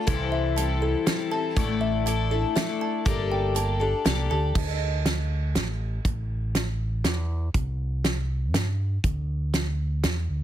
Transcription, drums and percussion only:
0, 0, Header, 1, 2, 480
1, 0, Start_track
1, 0, Tempo, 498339
1, 71, Time_signature, 3, 2, 24, 8
1, 10051, End_track
2, 0, Start_track
2, 0, Title_t, "Drums"
2, 72, Note_on_c, 9, 36, 106
2, 72, Note_on_c, 9, 42, 63
2, 168, Note_off_c, 9, 42, 0
2, 169, Note_off_c, 9, 36, 0
2, 552, Note_on_c, 9, 42, 60
2, 648, Note_off_c, 9, 42, 0
2, 1029, Note_on_c, 9, 38, 89
2, 1029, Note_on_c, 9, 42, 65
2, 1125, Note_off_c, 9, 38, 0
2, 1125, Note_off_c, 9, 42, 0
2, 1508, Note_on_c, 9, 36, 112
2, 1510, Note_on_c, 9, 42, 62
2, 1605, Note_off_c, 9, 36, 0
2, 1606, Note_off_c, 9, 42, 0
2, 1989, Note_on_c, 9, 42, 63
2, 2086, Note_off_c, 9, 42, 0
2, 2469, Note_on_c, 9, 38, 88
2, 2469, Note_on_c, 9, 42, 62
2, 2565, Note_off_c, 9, 38, 0
2, 2565, Note_off_c, 9, 42, 0
2, 2947, Note_on_c, 9, 36, 117
2, 2948, Note_on_c, 9, 42, 64
2, 3043, Note_off_c, 9, 36, 0
2, 3044, Note_off_c, 9, 42, 0
2, 3426, Note_on_c, 9, 42, 60
2, 3523, Note_off_c, 9, 42, 0
2, 3906, Note_on_c, 9, 38, 92
2, 3906, Note_on_c, 9, 42, 58
2, 4003, Note_off_c, 9, 38, 0
2, 4003, Note_off_c, 9, 42, 0
2, 4385, Note_on_c, 9, 49, 77
2, 4386, Note_on_c, 9, 36, 90
2, 4481, Note_off_c, 9, 49, 0
2, 4482, Note_off_c, 9, 36, 0
2, 4869, Note_on_c, 9, 38, 71
2, 4869, Note_on_c, 9, 42, 53
2, 4965, Note_off_c, 9, 38, 0
2, 4965, Note_off_c, 9, 42, 0
2, 5349, Note_on_c, 9, 38, 76
2, 5349, Note_on_c, 9, 42, 54
2, 5445, Note_off_c, 9, 38, 0
2, 5445, Note_off_c, 9, 42, 0
2, 5827, Note_on_c, 9, 36, 100
2, 5827, Note_on_c, 9, 42, 54
2, 5923, Note_off_c, 9, 36, 0
2, 5923, Note_off_c, 9, 42, 0
2, 6308, Note_on_c, 9, 38, 71
2, 6308, Note_on_c, 9, 42, 53
2, 6404, Note_off_c, 9, 38, 0
2, 6404, Note_off_c, 9, 42, 0
2, 6784, Note_on_c, 9, 38, 74
2, 6784, Note_on_c, 9, 42, 52
2, 6881, Note_off_c, 9, 38, 0
2, 6881, Note_off_c, 9, 42, 0
2, 7264, Note_on_c, 9, 42, 50
2, 7266, Note_on_c, 9, 36, 93
2, 7361, Note_off_c, 9, 42, 0
2, 7363, Note_off_c, 9, 36, 0
2, 7748, Note_on_c, 9, 38, 74
2, 7748, Note_on_c, 9, 42, 47
2, 7845, Note_off_c, 9, 38, 0
2, 7845, Note_off_c, 9, 42, 0
2, 8227, Note_on_c, 9, 38, 81
2, 8227, Note_on_c, 9, 42, 56
2, 8324, Note_off_c, 9, 38, 0
2, 8324, Note_off_c, 9, 42, 0
2, 8705, Note_on_c, 9, 42, 58
2, 8706, Note_on_c, 9, 36, 93
2, 8801, Note_off_c, 9, 42, 0
2, 8803, Note_off_c, 9, 36, 0
2, 9186, Note_on_c, 9, 38, 72
2, 9186, Note_on_c, 9, 42, 54
2, 9282, Note_off_c, 9, 38, 0
2, 9282, Note_off_c, 9, 42, 0
2, 9666, Note_on_c, 9, 38, 75
2, 9666, Note_on_c, 9, 42, 56
2, 9762, Note_off_c, 9, 38, 0
2, 9762, Note_off_c, 9, 42, 0
2, 10051, End_track
0, 0, End_of_file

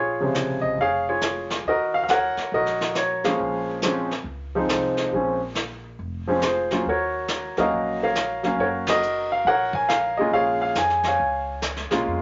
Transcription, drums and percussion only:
0, 0, Header, 1, 2, 480
1, 0, Start_track
1, 0, Key_signature, -5, "minor"
1, 0, Tempo, 433526
1, 1836, Time_signature, 4, 2, 24, 8
1, 13529, End_track
2, 0, Start_track
2, 0, Title_t, "Drums"
2, 380, Note_on_c, 9, 44, 55
2, 381, Note_on_c, 9, 38, 51
2, 491, Note_off_c, 9, 44, 0
2, 492, Note_off_c, 9, 38, 0
2, 861, Note_on_c, 9, 25, 41
2, 1342, Note_on_c, 9, 44, 50
2, 1343, Note_on_c, 9, 38, 58
2, 1453, Note_off_c, 9, 44, 0
2, 1454, Note_off_c, 9, 38, 0
2, 1663, Note_on_c, 9, 38, 50
2, 1774, Note_off_c, 9, 38, 0
2, 1827, Note_off_c, 9, 25, 0
2, 1827, Note_on_c, 9, 25, 47
2, 2305, Note_on_c, 9, 44, 48
2, 2306, Note_on_c, 9, 38, 53
2, 2415, Note_off_c, 9, 44, 0
2, 2416, Note_off_c, 9, 38, 0
2, 2623, Note_on_c, 9, 38, 37
2, 2734, Note_off_c, 9, 38, 0
2, 2783, Note_off_c, 9, 25, 0
2, 2783, Note_on_c, 9, 25, 37
2, 2942, Note_on_c, 9, 38, 26
2, 3053, Note_off_c, 9, 38, 0
2, 3107, Note_on_c, 9, 38, 40
2, 3218, Note_off_c, 9, 38, 0
2, 3264, Note_on_c, 9, 44, 49
2, 3265, Note_on_c, 9, 38, 61
2, 3375, Note_off_c, 9, 44, 0
2, 3376, Note_off_c, 9, 38, 0
2, 3587, Note_on_c, 9, 38, 36
2, 3698, Note_off_c, 9, 38, 0
2, 3755, Note_off_c, 9, 25, 0
2, 3755, Note_on_c, 9, 25, 40
2, 4228, Note_on_c, 9, 44, 57
2, 4230, Note_on_c, 9, 38, 53
2, 4339, Note_off_c, 9, 44, 0
2, 4340, Note_off_c, 9, 38, 0
2, 4550, Note_on_c, 9, 38, 34
2, 4661, Note_off_c, 9, 38, 0
2, 4713, Note_off_c, 9, 25, 0
2, 4713, Note_on_c, 9, 25, 45
2, 5192, Note_on_c, 9, 44, 57
2, 5193, Note_on_c, 9, 38, 57
2, 5302, Note_off_c, 9, 44, 0
2, 5303, Note_off_c, 9, 38, 0
2, 5499, Note_on_c, 9, 38, 34
2, 5610, Note_off_c, 9, 38, 0
2, 5672, Note_off_c, 9, 25, 0
2, 5672, Note_on_c, 9, 25, 44
2, 6145, Note_on_c, 9, 44, 47
2, 6146, Note_on_c, 9, 38, 54
2, 6256, Note_off_c, 9, 44, 0
2, 6257, Note_off_c, 9, 38, 0
2, 6620, Note_off_c, 9, 25, 0
2, 6620, Note_on_c, 9, 25, 40
2, 7103, Note_on_c, 9, 44, 59
2, 7104, Note_on_c, 9, 38, 57
2, 7214, Note_off_c, 9, 44, 0
2, 7215, Note_off_c, 9, 38, 0
2, 7424, Note_on_c, 9, 38, 35
2, 7535, Note_off_c, 9, 38, 0
2, 7588, Note_off_c, 9, 25, 0
2, 7588, Note_on_c, 9, 25, 44
2, 8062, Note_on_c, 9, 44, 57
2, 8063, Note_on_c, 9, 38, 56
2, 8172, Note_off_c, 9, 44, 0
2, 8173, Note_off_c, 9, 38, 0
2, 8380, Note_on_c, 9, 38, 33
2, 8490, Note_off_c, 9, 38, 0
2, 8549, Note_off_c, 9, 25, 0
2, 8549, Note_on_c, 9, 25, 40
2, 9025, Note_on_c, 9, 44, 52
2, 9026, Note_on_c, 9, 38, 55
2, 9136, Note_off_c, 9, 44, 0
2, 9137, Note_off_c, 9, 38, 0
2, 9338, Note_on_c, 9, 38, 36
2, 9449, Note_off_c, 9, 38, 0
2, 9507, Note_off_c, 9, 25, 0
2, 9507, Note_on_c, 9, 25, 42
2, 9816, Note_on_c, 9, 51, 58
2, 9817, Note_on_c, 9, 38, 71
2, 9927, Note_off_c, 9, 51, 0
2, 9928, Note_off_c, 9, 38, 0
2, 9991, Note_on_c, 9, 44, 46
2, 10102, Note_off_c, 9, 44, 0
2, 10467, Note_off_c, 9, 25, 0
2, 10467, Note_on_c, 9, 25, 38
2, 10776, Note_on_c, 9, 36, 53
2, 10887, Note_off_c, 9, 36, 0
2, 10951, Note_on_c, 9, 44, 50
2, 10952, Note_on_c, 9, 38, 63
2, 11061, Note_off_c, 9, 44, 0
2, 11063, Note_off_c, 9, 38, 0
2, 11424, Note_off_c, 9, 25, 0
2, 11424, Note_on_c, 9, 25, 47
2, 11903, Note_on_c, 9, 44, 59
2, 11904, Note_on_c, 9, 38, 54
2, 12014, Note_off_c, 9, 44, 0
2, 12015, Note_off_c, 9, 38, 0
2, 12065, Note_on_c, 9, 38, 28
2, 12176, Note_off_c, 9, 38, 0
2, 12215, Note_on_c, 9, 38, 36
2, 12227, Note_off_c, 9, 38, 0
2, 12227, Note_on_c, 9, 38, 40
2, 12337, Note_off_c, 9, 38, 0
2, 12377, Note_off_c, 9, 25, 0
2, 12377, Note_on_c, 9, 25, 41
2, 12864, Note_on_c, 9, 44, 63
2, 12865, Note_on_c, 9, 38, 61
2, 12975, Note_off_c, 9, 44, 0
2, 12976, Note_off_c, 9, 38, 0
2, 13023, Note_on_c, 9, 38, 27
2, 13133, Note_off_c, 9, 38, 0
2, 13183, Note_on_c, 9, 38, 41
2, 13294, Note_off_c, 9, 38, 0
2, 13343, Note_off_c, 9, 25, 0
2, 13343, Note_on_c, 9, 25, 43
2, 13529, Note_off_c, 9, 25, 0
2, 13529, End_track
0, 0, End_of_file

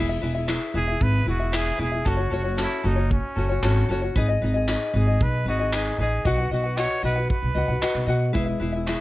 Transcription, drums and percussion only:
0, 0, Header, 1, 2, 480
1, 0, Start_track
1, 0, Key_signature, 4, "major"
1, 0, Tempo, 524017
1, 1886, Time_signature, 4, 2, 24, 8
1, 8250, End_track
2, 0, Start_track
2, 0, Title_t, "Drums"
2, 445, Note_on_c, 9, 39, 79
2, 537, Note_off_c, 9, 39, 0
2, 925, Note_on_c, 9, 36, 100
2, 1017, Note_off_c, 9, 36, 0
2, 1407, Note_on_c, 9, 39, 106
2, 1499, Note_off_c, 9, 39, 0
2, 1885, Note_on_c, 9, 36, 89
2, 1977, Note_off_c, 9, 36, 0
2, 2369, Note_on_c, 9, 39, 83
2, 2461, Note_off_c, 9, 39, 0
2, 2848, Note_on_c, 9, 36, 91
2, 2940, Note_off_c, 9, 36, 0
2, 3327, Note_on_c, 9, 39, 106
2, 3419, Note_off_c, 9, 39, 0
2, 3808, Note_on_c, 9, 36, 97
2, 3900, Note_off_c, 9, 36, 0
2, 4290, Note_on_c, 9, 39, 90
2, 4381, Note_off_c, 9, 39, 0
2, 4770, Note_on_c, 9, 36, 93
2, 4862, Note_off_c, 9, 36, 0
2, 5249, Note_on_c, 9, 39, 111
2, 5340, Note_off_c, 9, 39, 0
2, 5728, Note_on_c, 9, 36, 97
2, 5820, Note_off_c, 9, 36, 0
2, 6209, Note_on_c, 9, 39, 93
2, 6301, Note_off_c, 9, 39, 0
2, 6687, Note_on_c, 9, 36, 98
2, 6779, Note_off_c, 9, 36, 0
2, 7168, Note_on_c, 9, 39, 115
2, 7260, Note_off_c, 9, 39, 0
2, 7649, Note_on_c, 9, 36, 101
2, 7741, Note_off_c, 9, 36, 0
2, 8131, Note_on_c, 9, 39, 82
2, 8222, Note_off_c, 9, 39, 0
2, 8250, End_track
0, 0, End_of_file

